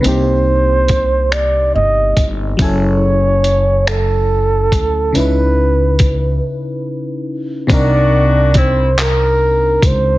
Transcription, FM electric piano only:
0, 0, Header, 1, 2, 480
1, 0, Start_track
1, 0, Tempo, 851064
1, 22, Time_signature, 6, 3, 24, 8
1, 5743, End_track
2, 0, Start_track
2, 0, Title_t, "FM electric piano"
2, 0, Program_c, 0, 5
2, 0, Control_c, 0, 64, 127
2, 5, Note_on_c, 0, 48, 59
2, 16, Note_on_c, 0, 60, 49
2, 25, Note_on_c, 0, 58, 47
2, 36, Note_on_c, 0, 63, 51
2, 46, Note_on_c, 0, 67, 61
2, 1431, Note_off_c, 0, 48, 0
2, 1436, Note_off_c, 0, 60, 0
2, 1441, Note_off_c, 0, 58, 0
2, 1446, Note_off_c, 0, 63, 0
2, 1449, Note_on_c, 0, 54, 54
2, 1452, Note_off_c, 0, 67, 0
2, 1460, Note_on_c, 0, 61, 49
2, 1469, Note_on_c, 0, 64, 52
2, 1470, Control_c, 0, 64, 0
2, 1478, Note_on_c, 0, 80, 49
2, 1489, Note_on_c, 0, 69, 67
2, 1563, Control_c, 0, 64, 127
2, 2873, Note_off_c, 0, 54, 0
2, 2879, Note_off_c, 0, 61, 0
2, 2883, Note_off_c, 0, 64, 0
2, 2887, Note_off_c, 0, 80, 0
2, 2890, Note_on_c, 0, 49, 54
2, 2893, Note_off_c, 0, 69, 0
2, 2901, Note_on_c, 0, 61, 49
2, 2907, Note_on_c, 0, 63, 49
2, 2911, Control_c, 0, 64, 0
2, 2919, Note_on_c, 0, 64, 56
2, 2931, Note_on_c, 0, 71, 57
2, 2997, Control_c, 0, 64, 127
2, 4314, Note_off_c, 0, 49, 0
2, 4319, Note_off_c, 0, 61, 0
2, 4322, Note_off_c, 0, 63, 0
2, 4327, Note_on_c, 0, 48, 60
2, 4328, Note_off_c, 0, 64, 0
2, 4334, Note_off_c, 0, 71, 0
2, 4334, Note_on_c, 0, 60, 60
2, 4344, Note_on_c, 0, 62, 56
2, 4349, Control_c, 0, 64, 0
2, 4356, Note_on_c, 0, 63, 55
2, 4364, Note_on_c, 0, 70, 69
2, 4438, Control_c, 0, 64, 127
2, 5743, Note_off_c, 0, 48, 0
2, 5743, Note_off_c, 0, 60, 0
2, 5743, Note_off_c, 0, 62, 0
2, 5743, Note_off_c, 0, 63, 0
2, 5743, Note_off_c, 0, 70, 0
2, 5743, End_track
0, 0, End_of_file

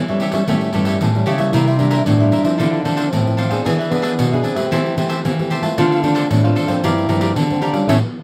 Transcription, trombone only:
0, 0, Header, 1, 2, 480
1, 0, Start_track
1, 0, Key_signature, -1, "minor"
1, 0, Tempo, 529101
1, 1399, Time_signature, 4, 2, 24, 8
1, 7469, End_track
2, 0, Start_track
2, 0, Title_t, "Trombone"
2, 0, Program_c, 0, 57
2, 1392, Note_on_c, 0, 64, 111
2, 1619, Note_on_c, 0, 62, 98
2, 1632, Note_off_c, 0, 64, 0
2, 1862, Note_off_c, 0, 62, 0
2, 1867, Note_on_c, 0, 62, 99
2, 2351, Note_on_c, 0, 64, 101
2, 2365, Note_off_c, 0, 62, 0
2, 2581, Note_on_c, 0, 62, 92
2, 2595, Note_off_c, 0, 64, 0
2, 2826, Note_on_c, 0, 60, 100
2, 2840, Note_off_c, 0, 62, 0
2, 3308, Note_off_c, 0, 60, 0
2, 3313, Note_on_c, 0, 59, 89
2, 3423, Note_off_c, 0, 59, 0
2, 3544, Note_on_c, 0, 59, 100
2, 4019, Note_on_c, 0, 60, 84
2, 4033, Note_off_c, 0, 59, 0
2, 4990, Note_off_c, 0, 60, 0
2, 5251, Note_on_c, 0, 65, 108
2, 5488, Note_on_c, 0, 62, 98
2, 5501, Note_off_c, 0, 65, 0
2, 5724, Note_off_c, 0, 62, 0
2, 5733, Note_on_c, 0, 62, 93
2, 6173, Note_off_c, 0, 62, 0
2, 6208, Note_on_c, 0, 64, 102
2, 6685, Note_on_c, 0, 62, 99
2, 6698, Note_off_c, 0, 64, 0
2, 6910, Note_off_c, 0, 62, 0
2, 6915, Note_on_c, 0, 62, 87
2, 7140, Note_off_c, 0, 62, 0
2, 7166, Note_on_c, 0, 61, 92
2, 7221, Note_off_c, 0, 61, 0
2, 7469, End_track
0, 0, End_of_file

